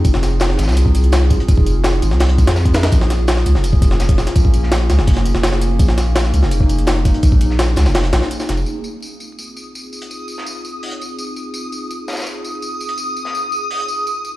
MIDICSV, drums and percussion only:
0, 0, Header, 1, 2, 480
1, 0, Start_track
1, 0, Tempo, 359281
1, 60, Time_signature, 4, 2, 24, 8
1, 19192, End_track
2, 0, Start_track
2, 0, Title_t, "Drums"
2, 60, Note_on_c, 9, 54, 95
2, 64, Note_on_c, 9, 36, 113
2, 65, Note_on_c, 9, 42, 92
2, 187, Note_on_c, 9, 38, 58
2, 194, Note_off_c, 9, 54, 0
2, 198, Note_off_c, 9, 36, 0
2, 199, Note_off_c, 9, 42, 0
2, 307, Note_off_c, 9, 38, 0
2, 307, Note_on_c, 9, 38, 53
2, 307, Note_on_c, 9, 42, 70
2, 308, Note_on_c, 9, 54, 74
2, 440, Note_off_c, 9, 38, 0
2, 440, Note_off_c, 9, 42, 0
2, 442, Note_off_c, 9, 54, 0
2, 532, Note_on_c, 9, 54, 88
2, 533, Note_on_c, 9, 38, 124
2, 546, Note_off_c, 9, 38, 0
2, 546, Note_on_c, 9, 38, 116
2, 546, Note_on_c, 9, 42, 92
2, 665, Note_off_c, 9, 54, 0
2, 667, Note_off_c, 9, 38, 0
2, 667, Note_on_c, 9, 38, 43
2, 680, Note_off_c, 9, 42, 0
2, 769, Note_off_c, 9, 38, 0
2, 769, Note_on_c, 9, 38, 95
2, 787, Note_on_c, 9, 42, 73
2, 791, Note_on_c, 9, 54, 67
2, 843, Note_off_c, 9, 38, 0
2, 843, Note_on_c, 9, 38, 88
2, 847, Note_off_c, 9, 54, 0
2, 847, Note_on_c, 9, 54, 64
2, 905, Note_off_c, 9, 38, 0
2, 905, Note_on_c, 9, 38, 40
2, 908, Note_off_c, 9, 38, 0
2, 908, Note_on_c, 9, 38, 97
2, 919, Note_off_c, 9, 54, 0
2, 919, Note_on_c, 9, 54, 74
2, 921, Note_off_c, 9, 42, 0
2, 965, Note_off_c, 9, 54, 0
2, 965, Note_on_c, 9, 54, 69
2, 974, Note_off_c, 9, 38, 0
2, 974, Note_on_c, 9, 38, 86
2, 1025, Note_off_c, 9, 54, 0
2, 1025, Note_on_c, 9, 54, 90
2, 1027, Note_on_c, 9, 42, 91
2, 1107, Note_off_c, 9, 38, 0
2, 1145, Note_on_c, 9, 36, 97
2, 1159, Note_off_c, 9, 54, 0
2, 1160, Note_off_c, 9, 42, 0
2, 1264, Note_on_c, 9, 42, 72
2, 1278, Note_off_c, 9, 36, 0
2, 1285, Note_on_c, 9, 54, 64
2, 1387, Note_off_c, 9, 42, 0
2, 1387, Note_on_c, 9, 42, 46
2, 1418, Note_off_c, 9, 54, 0
2, 1498, Note_on_c, 9, 54, 94
2, 1505, Note_off_c, 9, 42, 0
2, 1505, Note_on_c, 9, 38, 117
2, 1505, Note_on_c, 9, 42, 88
2, 1512, Note_off_c, 9, 38, 0
2, 1512, Note_on_c, 9, 38, 119
2, 1632, Note_off_c, 9, 54, 0
2, 1638, Note_off_c, 9, 42, 0
2, 1646, Note_off_c, 9, 38, 0
2, 1739, Note_on_c, 9, 54, 72
2, 1744, Note_on_c, 9, 36, 101
2, 1745, Note_on_c, 9, 42, 69
2, 1872, Note_off_c, 9, 42, 0
2, 1872, Note_off_c, 9, 54, 0
2, 1872, Note_on_c, 9, 42, 47
2, 1878, Note_off_c, 9, 36, 0
2, 1983, Note_off_c, 9, 42, 0
2, 1983, Note_on_c, 9, 42, 90
2, 1984, Note_on_c, 9, 36, 116
2, 1984, Note_on_c, 9, 54, 86
2, 2104, Note_off_c, 9, 36, 0
2, 2104, Note_on_c, 9, 36, 99
2, 2117, Note_off_c, 9, 42, 0
2, 2117, Note_off_c, 9, 54, 0
2, 2223, Note_on_c, 9, 54, 77
2, 2224, Note_on_c, 9, 42, 69
2, 2238, Note_off_c, 9, 36, 0
2, 2356, Note_off_c, 9, 54, 0
2, 2358, Note_off_c, 9, 42, 0
2, 2454, Note_on_c, 9, 38, 115
2, 2462, Note_off_c, 9, 38, 0
2, 2462, Note_on_c, 9, 38, 118
2, 2462, Note_on_c, 9, 42, 90
2, 2462, Note_on_c, 9, 54, 86
2, 2596, Note_off_c, 9, 38, 0
2, 2596, Note_off_c, 9, 42, 0
2, 2596, Note_off_c, 9, 54, 0
2, 2704, Note_on_c, 9, 42, 73
2, 2708, Note_on_c, 9, 54, 75
2, 2824, Note_on_c, 9, 38, 48
2, 2837, Note_off_c, 9, 42, 0
2, 2841, Note_off_c, 9, 54, 0
2, 2936, Note_on_c, 9, 46, 86
2, 2945, Note_off_c, 9, 38, 0
2, 2945, Note_on_c, 9, 38, 109
2, 2945, Note_on_c, 9, 42, 82
2, 3061, Note_off_c, 9, 42, 0
2, 3061, Note_on_c, 9, 42, 44
2, 3069, Note_off_c, 9, 46, 0
2, 3079, Note_off_c, 9, 38, 0
2, 3183, Note_on_c, 9, 54, 71
2, 3185, Note_on_c, 9, 36, 90
2, 3186, Note_off_c, 9, 42, 0
2, 3186, Note_on_c, 9, 42, 64
2, 3305, Note_off_c, 9, 42, 0
2, 3305, Note_on_c, 9, 38, 107
2, 3305, Note_on_c, 9, 42, 82
2, 3317, Note_off_c, 9, 54, 0
2, 3318, Note_off_c, 9, 36, 0
2, 3419, Note_off_c, 9, 38, 0
2, 3419, Note_on_c, 9, 38, 122
2, 3423, Note_on_c, 9, 54, 83
2, 3439, Note_off_c, 9, 42, 0
2, 3545, Note_on_c, 9, 36, 91
2, 3548, Note_on_c, 9, 42, 66
2, 3553, Note_off_c, 9, 38, 0
2, 3556, Note_off_c, 9, 54, 0
2, 3656, Note_on_c, 9, 54, 73
2, 3666, Note_off_c, 9, 42, 0
2, 3666, Note_on_c, 9, 38, 106
2, 3666, Note_on_c, 9, 42, 82
2, 3679, Note_off_c, 9, 36, 0
2, 3783, Note_off_c, 9, 38, 0
2, 3783, Note_off_c, 9, 42, 0
2, 3783, Note_on_c, 9, 38, 109
2, 3783, Note_on_c, 9, 42, 83
2, 3790, Note_off_c, 9, 54, 0
2, 3897, Note_on_c, 9, 54, 89
2, 3904, Note_on_c, 9, 36, 117
2, 3905, Note_off_c, 9, 42, 0
2, 3905, Note_on_c, 9, 42, 90
2, 3917, Note_off_c, 9, 38, 0
2, 4024, Note_on_c, 9, 38, 60
2, 4030, Note_off_c, 9, 54, 0
2, 4038, Note_off_c, 9, 36, 0
2, 4038, Note_off_c, 9, 42, 0
2, 4144, Note_off_c, 9, 38, 0
2, 4144, Note_on_c, 9, 38, 52
2, 4144, Note_on_c, 9, 42, 71
2, 4148, Note_on_c, 9, 54, 72
2, 4278, Note_off_c, 9, 38, 0
2, 4278, Note_off_c, 9, 42, 0
2, 4282, Note_off_c, 9, 54, 0
2, 4375, Note_on_c, 9, 54, 89
2, 4383, Note_on_c, 9, 38, 120
2, 4383, Note_on_c, 9, 42, 89
2, 4387, Note_off_c, 9, 38, 0
2, 4387, Note_on_c, 9, 38, 118
2, 4505, Note_off_c, 9, 38, 0
2, 4505, Note_on_c, 9, 38, 43
2, 4509, Note_off_c, 9, 54, 0
2, 4517, Note_off_c, 9, 42, 0
2, 4624, Note_on_c, 9, 42, 72
2, 4626, Note_on_c, 9, 54, 72
2, 4638, Note_off_c, 9, 38, 0
2, 4745, Note_on_c, 9, 38, 39
2, 4757, Note_off_c, 9, 42, 0
2, 4760, Note_off_c, 9, 54, 0
2, 4862, Note_on_c, 9, 42, 92
2, 4867, Note_on_c, 9, 54, 82
2, 4879, Note_off_c, 9, 38, 0
2, 4984, Note_on_c, 9, 36, 100
2, 4995, Note_off_c, 9, 42, 0
2, 5000, Note_off_c, 9, 54, 0
2, 5103, Note_off_c, 9, 36, 0
2, 5103, Note_on_c, 9, 36, 106
2, 5104, Note_on_c, 9, 54, 74
2, 5105, Note_on_c, 9, 42, 80
2, 5225, Note_on_c, 9, 38, 54
2, 5237, Note_off_c, 9, 36, 0
2, 5238, Note_off_c, 9, 42, 0
2, 5238, Note_off_c, 9, 54, 0
2, 5340, Note_on_c, 9, 54, 97
2, 5345, Note_off_c, 9, 38, 0
2, 5345, Note_on_c, 9, 38, 47
2, 5345, Note_on_c, 9, 42, 63
2, 5348, Note_off_c, 9, 38, 0
2, 5348, Note_on_c, 9, 38, 120
2, 5464, Note_on_c, 9, 36, 103
2, 5465, Note_off_c, 9, 42, 0
2, 5465, Note_on_c, 9, 42, 86
2, 5474, Note_off_c, 9, 54, 0
2, 5481, Note_off_c, 9, 38, 0
2, 5585, Note_on_c, 9, 38, 55
2, 5587, Note_on_c, 9, 54, 71
2, 5598, Note_off_c, 9, 36, 0
2, 5598, Note_off_c, 9, 42, 0
2, 5704, Note_off_c, 9, 38, 0
2, 5704, Note_on_c, 9, 38, 47
2, 5704, Note_on_c, 9, 42, 64
2, 5705, Note_off_c, 9, 42, 0
2, 5705, Note_on_c, 9, 42, 42
2, 5720, Note_off_c, 9, 54, 0
2, 5818, Note_on_c, 9, 54, 87
2, 5822, Note_off_c, 9, 42, 0
2, 5822, Note_on_c, 9, 42, 90
2, 5823, Note_on_c, 9, 36, 114
2, 5837, Note_off_c, 9, 38, 0
2, 5943, Note_off_c, 9, 36, 0
2, 5943, Note_on_c, 9, 36, 97
2, 5951, Note_off_c, 9, 54, 0
2, 5955, Note_off_c, 9, 42, 0
2, 6061, Note_on_c, 9, 42, 70
2, 6061, Note_on_c, 9, 54, 72
2, 6076, Note_off_c, 9, 36, 0
2, 6188, Note_on_c, 9, 38, 48
2, 6194, Note_off_c, 9, 42, 0
2, 6194, Note_off_c, 9, 54, 0
2, 6299, Note_on_c, 9, 54, 81
2, 6300, Note_off_c, 9, 38, 0
2, 6300, Note_on_c, 9, 38, 115
2, 6300, Note_on_c, 9, 42, 89
2, 6306, Note_off_c, 9, 38, 0
2, 6306, Note_on_c, 9, 38, 119
2, 6433, Note_off_c, 9, 54, 0
2, 6434, Note_off_c, 9, 42, 0
2, 6440, Note_off_c, 9, 38, 0
2, 6540, Note_on_c, 9, 38, 59
2, 6540, Note_on_c, 9, 42, 72
2, 6540, Note_on_c, 9, 54, 71
2, 6661, Note_off_c, 9, 38, 0
2, 6661, Note_on_c, 9, 38, 47
2, 6673, Note_off_c, 9, 54, 0
2, 6674, Note_off_c, 9, 42, 0
2, 6775, Note_on_c, 9, 46, 74
2, 6780, Note_on_c, 9, 42, 91
2, 6782, Note_on_c, 9, 36, 117
2, 6795, Note_off_c, 9, 38, 0
2, 6898, Note_off_c, 9, 42, 0
2, 6898, Note_on_c, 9, 42, 46
2, 6902, Note_on_c, 9, 38, 51
2, 6908, Note_off_c, 9, 46, 0
2, 6916, Note_off_c, 9, 36, 0
2, 7021, Note_off_c, 9, 42, 0
2, 7021, Note_on_c, 9, 42, 73
2, 7028, Note_on_c, 9, 54, 66
2, 7036, Note_off_c, 9, 38, 0
2, 7142, Note_on_c, 9, 38, 56
2, 7155, Note_off_c, 9, 42, 0
2, 7161, Note_off_c, 9, 54, 0
2, 7260, Note_off_c, 9, 38, 0
2, 7260, Note_on_c, 9, 38, 118
2, 7260, Note_on_c, 9, 54, 86
2, 7261, Note_off_c, 9, 38, 0
2, 7261, Note_on_c, 9, 38, 118
2, 7261, Note_on_c, 9, 42, 90
2, 7382, Note_off_c, 9, 38, 0
2, 7382, Note_on_c, 9, 38, 52
2, 7394, Note_off_c, 9, 54, 0
2, 7395, Note_off_c, 9, 42, 0
2, 7503, Note_on_c, 9, 42, 73
2, 7505, Note_on_c, 9, 54, 67
2, 7516, Note_off_c, 9, 38, 0
2, 7636, Note_off_c, 9, 42, 0
2, 7639, Note_off_c, 9, 54, 0
2, 7742, Note_on_c, 9, 42, 89
2, 7743, Note_on_c, 9, 36, 114
2, 7743, Note_on_c, 9, 54, 91
2, 7863, Note_on_c, 9, 38, 60
2, 7875, Note_off_c, 9, 42, 0
2, 7876, Note_off_c, 9, 54, 0
2, 7877, Note_off_c, 9, 36, 0
2, 7984, Note_on_c, 9, 54, 75
2, 7986, Note_off_c, 9, 38, 0
2, 7986, Note_on_c, 9, 38, 53
2, 7986, Note_on_c, 9, 42, 67
2, 8118, Note_off_c, 9, 54, 0
2, 8120, Note_off_c, 9, 38, 0
2, 8120, Note_off_c, 9, 42, 0
2, 8222, Note_on_c, 9, 38, 117
2, 8225, Note_off_c, 9, 38, 0
2, 8225, Note_on_c, 9, 38, 120
2, 8225, Note_on_c, 9, 42, 92
2, 8230, Note_on_c, 9, 54, 98
2, 8345, Note_off_c, 9, 38, 0
2, 8345, Note_on_c, 9, 38, 43
2, 8359, Note_off_c, 9, 42, 0
2, 8364, Note_off_c, 9, 54, 0
2, 8466, Note_on_c, 9, 42, 72
2, 8475, Note_on_c, 9, 54, 65
2, 8479, Note_off_c, 9, 38, 0
2, 8585, Note_on_c, 9, 38, 40
2, 8600, Note_off_c, 9, 42, 0
2, 8609, Note_off_c, 9, 54, 0
2, 8702, Note_on_c, 9, 42, 92
2, 8712, Note_on_c, 9, 54, 84
2, 8719, Note_off_c, 9, 38, 0
2, 8824, Note_on_c, 9, 36, 96
2, 8835, Note_off_c, 9, 42, 0
2, 8846, Note_off_c, 9, 54, 0
2, 8940, Note_on_c, 9, 54, 74
2, 8944, Note_on_c, 9, 42, 72
2, 8957, Note_off_c, 9, 36, 0
2, 9064, Note_off_c, 9, 42, 0
2, 9064, Note_on_c, 9, 42, 45
2, 9074, Note_off_c, 9, 54, 0
2, 9176, Note_on_c, 9, 38, 127
2, 9176, Note_on_c, 9, 54, 91
2, 9184, Note_off_c, 9, 38, 0
2, 9184, Note_off_c, 9, 42, 0
2, 9184, Note_on_c, 9, 38, 122
2, 9184, Note_on_c, 9, 42, 92
2, 9310, Note_off_c, 9, 54, 0
2, 9317, Note_off_c, 9, 38, 0
2, 9317, Note_off_c, 9, 42, 0
2, 9422, Note_on_c, 9, 36, 100
2, 9422, Note_on_c, 9, 42, 73
2, 9423, Note_on_c, 9, 54, 64
2, 9543, Note_off_c, 9, 42, 0
2, 9543, Note_on_c, 9, 42, 43
2, 9556, Note_off_c, 9, 36, 0
2, 9557, Note_off_c, 9, 54, 0
2, 9656, Note_on_c, 9, 54, 93
2, 9660, Note_off_c, 9, 42, 0
2, 9660, Note_on_c, 9, 42, 90
2, 9662, Note_on_c, 9, 36, 110
2, 9782, Note_off_c, 9, 36, 0
2, 9782, Note_on_c, 9, 36, 99
2, 9790, Note_off_c, 9, 54, 0
2, 9794, Note_off_c, 9, 42, 0
2, 9899, Note_on_c, 9, 42, 69
2, 9900, Note_on_c, 9, 54, 72
2, 9915, Note_off_c, 9, 36, 0
2, 10026, Note_on_c, 9, 38, 46
2, 10033, Note_off_c, 9, 42, 0
2, 10034, Note_off_c, 9, 54, 0
2, 10140, Note_off_c, 9, 38, 0
2, 10140, Note_on_c, 9, 38, 116
2, 10141, Note_off_c, 9, 38, 0
2, 10141, Note_on_c, 9, 38, 118
2, 10141, Note_on_c, 9, 42, 90
2, 10148, Note_on_c, 9, 54, 89
2, 10275, Note_off_c, 9, 38, 0
2, 10275, Note_off_c, 9, 42, 0
2, 10281, Note_off_c, 9, 54, 0
2, 10370, Note_on_c, 9, 54, 83
2, 10380, Note_on_c, 9, 38, 109
2, 10382, Note_off_c, 9, 38, 0
2, 10382, Note_on_c, 9, 38, 60
2, 10382, Note_on_c, 9, 42, 73
2, 10494, Note_off_c, 9, 38, 0
2, 10494, Note_on_c, 9, 38, 112
2, 10499, Note_off_c, 9, 54, 0
2, 10499, Note_on_c, 9, 54, 76
2, 10501, Note_off_c, 9, 38, 0
2, 10501, Note_on_c, 9, 38, 48
2, 10516, Note_off_c, 9, 42, 0
2, 10614, Note_on_c, 9, 46, 85
2, 10620, Note_off_c, 9, 38, 0
2, 10620, Note_on_c, 9, 38, 109
2, 10620, Note_on_c, 9, 42, 84
2, 10632, Note_off_c, 9, 54, 0
2, 10737, Note_off_c, 9, 42, 0
2, 10737, Note_on_c, 9, 42, 45
2, 10740, Note_off_c, 9, 38, 0
2, 10740, Note_on_c, 9, 38, 50
2, 10747, Note_off_c, 9, 46, 0
2, 10858, Note_on_c, 9, 54, 81
2, 10859, Note_off_c, 9, 38, 0
2, 10859, Note_off_c, 9, 42, 0
2, 10859, Note_on_c, 9, 38, 110
2, 10859, Note_on_c, 9, 42, 85
2, 10981, Note_off_c, 9, 38, 0
2, 10981, Note_on_c, 9, 38, 40
2, 10991, Note_off_c, 9, 54, 0
2, 10993, Note_off_c, 9, 42, 0
2, 11100, Note_on_c, 9, 42, 62
2, 11105, Note_on_c, 9, 54, 61
2, 11114, Note_off_c, 9, 38, 0
2, 11216, Note_off_c, 9, 54, 0
2, 11216, Note_on_c, 9, 54, 81
2, 11221, Note_on_c, 9, 38, 36
2, 11234, Note_off_c, 9, 42, 0
2, 11341, Note_off_c, 9, 38, 0
2, 11341, Note_on_c, 9, 38, 41
2, 11341, Note_on_c, 9, 42, 72
2, 11349, Note_off_c, 9, 54, 0
2, 11453, Note_on_c, 9, 54, 63
2, 11475, Note_off_c, 9, 38, 0
2, 11475, Note_off_c, 9, 42, 0
2, 11571, Note_off_c, 9, 54, 0
2, 11571, Note_on_c, 9, 54, 81
2, 11705, Note_off_c, 9, 54, 0
2, 11809, Note_on_c, 9, 54, 67
2, 11942, Note_off_c, 9, 54, 0
2, 12057, Note_on_c, 9, 54, 76
2, 12190, Note_off_c, 9, 54, 0
2, 12294, Note_on_c, 9, 54, 57
2, 12428, Note_off_c, 9, 54, 0
2, 12540, Note_on_c, 9, 54, 77
2, 12674, Note_off_c, 9, 54, 0
2, 12780, Note_on_c, 9, 54, 60
2, 12914, Note_off_c, 9, 54, 0
2, 13029, Note_on_c, 9, 54, 75
2, 13162, Note_off_c, 9, 54, 0
2, 13261, Note_on_c, 9, 54, 53
2, 13381, Note_on_c, 9, 42, 38
2, 13395, Note_off_c, 9, 54, 0
2, 13503, Note_on_c, 9, 54, 73
2, 13515, Note_off_c, 9, 42, 0
2, 13636, Note_off_c, 9, 54, 0
2, 13730, Note_on_c, 9, 54, 62
2, 13864, Note_off_c, 9, 54, 0
2, 13866, Note_on_c, 9, 38, 42
2, 13980, Note_on_c, 9, 54, 78
2, 13999, Note_off_c, 9, 38, 0
2, 14113, Note_off_c, 9, 54, 0
2, 14224, Note_on_c, 9, 54, 61
2, 14357, Note_off_c, 9, 54, 0
2, 14467, Note_on_c, 9, 46, 64
2, 14580, Note_on_c, 9, 42, 38
2, 14600, Note_off_c, 9, 46, 0
2, 14714, Note_off_c, 9, 42, 0
2, 14715, Note_on_c, 9, 54, 60
2, 14849, Note_off_c, 9, 54, 0
2, 14944, Note_on_c, 9, 54, 71
2, 15077, Note_off_c, 9, 54, 0
2, 15182, Note_on_c, 9, 54, 58
2, 15316, Note_off_c, 9, 54, 0
2, 15413, Note_on_c, 9, 54, 81
2, 15547, Note_off_c, 9, 54, 0
2, 15661, Note_on_c, 9, 54, 63
2, 15795, Note_off_c, 9, 54, 0
2, 15906, Note_on_c, 9, 54, 80
2, 16039, Note_off_c, 9, 54, 0
2, 16135, Note_on_c, 9, 54, 56
2, 16141, Note_on_c, 9, 38, 70
2, 16202, Note_off_c, 9, 54, 0
2, 16202, Note_on_c, 9, 54, 53
2, 16206, Note_off_c, 9, 38, 0
2, 16206, Note_on_c, 9, 38, 78
2, 16255, Note_off_c, 9, 54, 0
2, 16255, Note_on_c, 9, 54, 57
2, 16266, Note_off_c, 9, 38, 0
2, 16266, Note_on_c, 9, 38, 76
2, 16322, Note_off_c, 9, 54, 0
2, 16322, Note_on_c, 9, 54, 56
2, 16328, Note_off_c, 9, 38, 0
2, 16328, Note_on_c, 9, 38, 72
2, 16387, Note_off_c, 9, 54, 0
2, 16387, Note_on_c, 9, 54, 83
2, 16462, Note_off_c, 9, 38, 0
2, 16521, Note_off_c, 9, 54, 0
2, 16625, Note_on_c, 9, 54, 57
2, 16759, Note_off_c, 9, 54, 0
2, 16864, Note_on_c, 9, 54, 69
2, 16998, Note_off_c, 9, 54, 0
2, 17109, Note_on_c, 9, 54, 65
2, 17219, Note_on_c, 9, 42, 36
2, 17242, Note_off_c, 9, 54, 0
2, 17337, Note_on_c, 9, 54, 80
2, 17352, Note_off_c, 9, 42, 0
2, 17470, Note_off_c, 9, 54, 0
2, 17589, Note_on_c, 9, 54, 62
2, 17704, Note_on_c, 9, 38, 42
2, 17723, Note_off_c, 9, 54, 0
2, 17832, Note_on_c, 9, 54, 77
2, 17837, Note_off_c, 9, 38, 0
2, 17965, Note_off_c, 9, 54, 0
2, 18063, Note_on_c, 9, 54, 56
2, 18196, Note_off_c, 9, 54, 0
2, 18309, Note_on_c, 9, 46, 63
2, 18434, Note_on_c, 9, 42, 36
2, 18443, Note_off_c, 9, 46, 0
2, 18547, Note_on_c, 9, 54, 60
2, 18568, Note_off_c, 9, 42, 0
2, 18681, Note_off_c, 9, 54, 0
2, 18796, Note_on_c, 9, 54, 78
2, 18929, Note_off_c, 9, 54, 0
2, 19031, Note_on_c, 9, 54, 62
2, 19165, Note_off_c, 9, 54, 0
2, 19192, End_track
0, 0, End_of_file